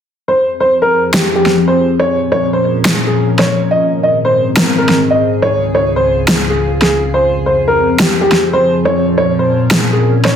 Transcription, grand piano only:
0.28 C5
0.60 C5
0.82 A#4
1.14 G4
1.35 G4
1.68 C5
1.99 C#5
2.32 C#5
2.53 C5
2.85 G#4
3.07 G#4
3.39 C#5
3.71 D#5
4.03 D#5
4.25 C5
4.57 A#4
4.78 A#4
5.10 D#5
5.42 C#5
5.75 C#5
5.96 C5
6.28 G#4
6.50 G#4
6.82 G#4
7.14 C5
7.46 C5
7.68 A#4
8.00 G4
8.21 G4
8.53 C5
8.85 C#5
9.18 C#5
9.39 C5
9.71 G#4
9.92 G#4
10.25 C#5

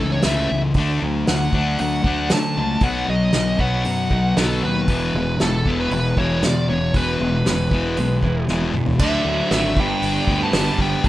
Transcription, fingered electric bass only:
Already playing: C#2
0.24 C#2
0.51 C#2
0.75 D2
1.02 D2
1.28 D2
1.53 D2
1.80 D2
2.04 D2
2.32 D3
2.57 C#2
2.81 B1
3.08 B1
3.35 B1
3.59 B1
3.86 F#2
4.10 B1
4.38 B1
4.63 D#2
4.88 E1
5.15 E1
5.40 E1
5.66 E1
5.91 E1
6.17 E1
6.42 E2
6.69 E1
6.95 E1
7.21 E1
7.46 E1
7.71 E1
7.98 B1
8.23 E1
8.50 E1
8.74 E1
9.00 D2
9.25 D2
9.51 G#1
9.77 G1
10.02 G1
10.27 D2
10.53 G1
10.79 G1
11.04 D2

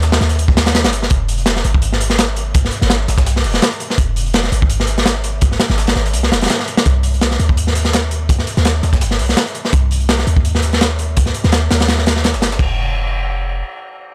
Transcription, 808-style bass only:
Already playing: D#2
0.21 D#2
0.84 G1
1.11 F1
1.65 G#1
2.82 G#1
3.08 G#1
3.26 C2
3.44 F1
3.98 F1
4.52 G#1
5.70 G#1
5.96 G#1
6.14 C2
6.32 F1
6.86 C2
7.40 D#2
8.57 D#2
8.83 D#2
9.01 G1
9.19 C2
9.73 C2
10.27 D#2
11.44 D#2
11.71 D#2
12.34 G1
12.59 F1

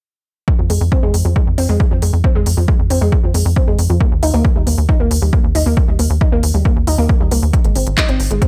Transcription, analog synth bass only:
0.59 F2
0.70 F2
0.81 F2
1.03 F2
1.14 F2
1.25 F2
1.47 F2
1.58 F2
1.69 F2
1.91 F2
2.02 F2
2.13 F2
2.35 F2
2.46 F2
2.57 F2
2.79 F2
2.90 F2
3.01 F2
3.23 F2
3.34 F2
3.46 F2
3.67 F2
3.79 F2
3.90 F2
4.12 D#2
4.23 D#2
4.34 D#2
4.56 D#2
4.67 D#2
4.78 D#2
5.00 D#2
5.11 D#2
5.22 D#2
5.44 D#2
5.55 D#2
5.66 D#2
5.88 D#2
5.99 D#2
6.10 D#2
6.32 D#2
6.43 D#2
6.54 D#2
6.76 D#2
6.87 D#2
6.98 D#2
7.20 D#2
7.31 C#2
7.43 D#2
7.65 G#1
7.76 G#1
7.87 G#1
8.09 G#1
8.20 G#1
8.31 G#1

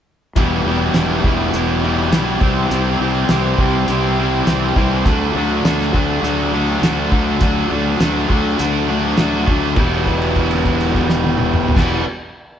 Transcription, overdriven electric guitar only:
0.36 E3 G3 B3 E4
0.65 E3 G3 B3 E4
0.94 E3 G3 B3 E4
1.24 E3 G3 B3 E4
1.55 E3 G3 B3 E4
1.82 E3 G3 B3 E4
2.13 E3 G3 B3 E4
2.41 C3 G3 C4 E4
2.72 C3 G3 C4 E4
3.01 C3 G3 C4 E4
3.29 C3 G3 C4 E4
3.59 C3 G3 C4 E4
3.89 C3 G3 C4 E4
4.19 C3 G3 C4 E4
4.47 C3 G3 C4 E4
4.76 C3 G3 C4 E4
5.05 D3 F#3 A3 D4
5.35 D3 F#3 A3 D4
5.64 D3 F#3 A3 D4
5.93 D3 F#3 A3 D4
6.22 D3 F#3 A3 D4
6.52 D3 F#3 A3 D4
6.83 D3 F#3 A3 D4
7.12 D3 F#3 A3 D4
7.42 D3 F#3 A3 D4
7.70 D3 F#3 A3 D4
7.99 D3 F#3 A3 D4
8.30 D3 F#3 A3 D4
8.59 D3 F#3 A3 D4
8.90 D3 F#3 A3 D4
9.19 D3 F#3 A3 D4
9.50 D3 F#3 A3 D4
9.76 E3 B3 E4 G4 B4
11.75 E3 B3 E4 G4
11.79 B4

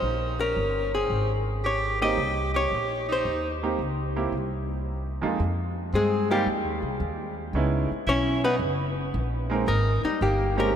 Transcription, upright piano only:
2.01 A#3 C4 D#4 G4
3.63 A#3 C4 D#4 G4
4.16 A#3 C4 E4 G4
5.22 F2 G#3 A#3 D#4 F4
6.30 G#3 A#3 C4 D#4 G4
7.55 G#3 B3 C#4 D#4 E4
9.50 G#3 A#3 C4 D#4 A#4
10.56 G#3 A#3 C4 D#4 G4

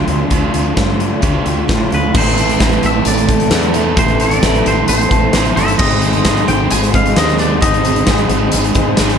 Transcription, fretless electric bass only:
0.08 D2
0.31 D2
0.54 D2
0.77 G2
1.23 D2
1.46 D2
1.70 A2
1.92 D2
2.15 A1
2.60 A1
2.83 A1
3.06 A1
3.51 E2
3.97 A1
4.43 A1
4.66 A1
4.88 A1
5.11 A1
5.33 A1
5.56 G1
5.80 G#1
6.25 G#1
6.48 G#1
6.72 G#1
7.17 D#2
7.63 G#1
8.07 G#1
8.29 G#1
8.54 G#1
8.75 G#1
8.99 G#1

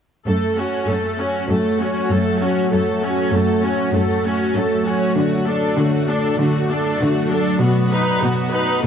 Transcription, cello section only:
0.28 F#2
0.89 F#2
1.50 F#2
2.11 F#2
2.72 F#2
3.34 F#2
3.95 F#2
4.56 F#2
5.17 D3
5.78 D3
6.39 D3
7.01 D3
7.62 B2
8.24 B2

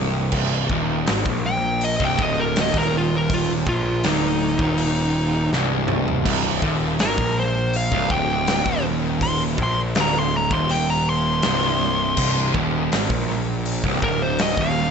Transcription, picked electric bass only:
Already playing: C1
0.32 C1
0.69 D#1
1.09 G#1
1.25 A#1
2.00 C1
2.18 D1
2.74 D#1
3.66 A#1
4.05 D1
4.59 D#1
5.52 C1
6.25 C1
6.62 D#1
7.00 G#1
7.18 A#1
7.92 C1
8.10 D1
8.66 D#1
9.58 A#1
9.98 D1
10.51 D#1
11.44 C1
12.17 C1
12.54 D#1
12.91 G#1
13.10 A#1
13.84 C1
14.02 D1
14.57 D#1

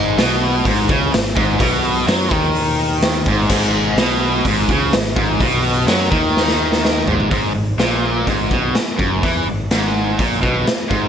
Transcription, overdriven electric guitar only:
Already playing: G#2
0.18 B2
0.66 G#2
0.89 C#3
1.13 G#2
1.36 G#2
1.59 B2
2.08 F#3
2.32 D#3
3.28 G#2
3.51 G#2
3.99 B2
4.47 G#2
4.71 C#3
4.93 G#2
5.16 G#2
5.40 B2
5.88 F#3
6.11 D#3
7.08 G#2
7.31 G#2
7.55 G#2
7.79 A#2
8.26 G#2
8.52 B2
8.76 muted overdriven electric guitar stroke
8.98 F#2
9.23 E3
9.48 G#2
9.72 G#2
10.19 A#2
10.41 B2
10.65 muted overdriven electric guitar stroke
10.89 G#2

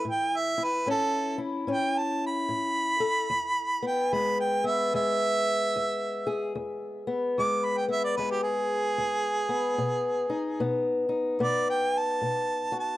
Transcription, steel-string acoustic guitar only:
Already playing: E3 E4
0.05 A2
0.58 E4
0.86 A2 C#4
1.38 E4
1.67 A2 C#4
2.49 A2
3.00 A4
3.30 E2
3.82 B3
4.13 E2 G#3
4.64 B3
4.94 E2 G#3
5.76 E2
6.27 G#4
6.55 E2
7.07 B3
7.38 E2 G#3
7.88 B3
8.18 E2 G#3
8.98 E2
9.49 B3
9.78 B2
10.30 D#4
10.60 B2 B3
11.09 D#4
11.40 B2 B3
12.22 B2
12.72 F#4

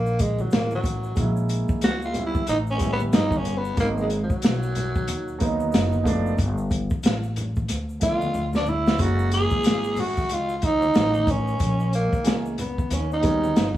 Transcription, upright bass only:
Already playing: A#1
0.52 A1
1.17 A#1
1.69 muted upright bass stroke
1.82 C#2
2.48 A1
3.13 G1
3.78 G#1
4.30 muted upright bass stroke
4.43 B1
5.08 D#2
5.74 F#1
6.39 G1
6.91 muted upright bass stroke
7.04 A1
7.69 D2
8.35 D2
9.00 F#1
9.66 G#1
10.31 C#2
10.95 A1
11.60 A#1
12.26 C#2
12.91 D#2
13.56 G1

